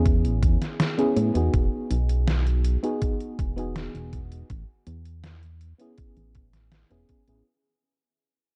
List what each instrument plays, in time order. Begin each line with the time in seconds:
Already playing: analog synth bass E2, fm electric piano B3 C#4 E4 G#4
0.06 kick, closed hi-hat
0.24 analog synth bass A1, closed hi-hat
0.43 analog synth bass E2, kick, closed hi-hat
0.62 snare, closed hi-hat
0.80 snare, closed hi-hat
0.98 fm electric piano B3 C#4 E4 G#4, closed hi-hat
1.17 analog synth bass A2, closed hi-hat
1.34 analog synth bass E2, fm electric piano B3 D#4 F#4 G#4, closed hi-hat
1.54 analog synth bass E1, kick, closed hi-hat
1.91 analog synth bass B1, closed hi-hat
2.09 closed hi-hat
2.28 snare, closed hi-hat
2.47 closed hi-hat
2.65 closed hi-hat
2.83 fm electric piano B3 D#4 F#4 G#4, closed hi-hat
3.02 kick, closed hi-hat
3.20 closed hi-hat
3.39 analog synth bass E1, kick, closed hi-hat
3.56 fm electric piano B3 D#4 F#4 G#4, closed hi-hat
3.76 snare, closed hi-hat
3.95 analog synth bass E1, closed hi-hat
4.13 kick, closed hi-hat
4.32 closed hi-hat
4.50 analog synth bass A1, kick, closed hi-hat
4.87 analog synth bass E2, closed hi-hat
5.05 closed hi-hat
5.24 snare, closed hi-hat
5.43 closed hi-hat
5.61 closed hi-hat
5.78 fm electric piano B3 C#4 E4 G#4, closed hi-hat
5.98 kick, closed hi-hat
6.17 analog synth bass A1, closed hi-hat
6.35 kick, closed hi-hat
6.53 snare, closed hi-hat
6.72 snare, closed hi-hat
6.90 analog synth bass E1, fm electric piano B3 C#4 E4 G#4, closed hi-hat
7.09 kick, closed hi-hat
7.27 analog synth bass A1, fm electric piano B3 C#4 E4 G#4, closed hi-hat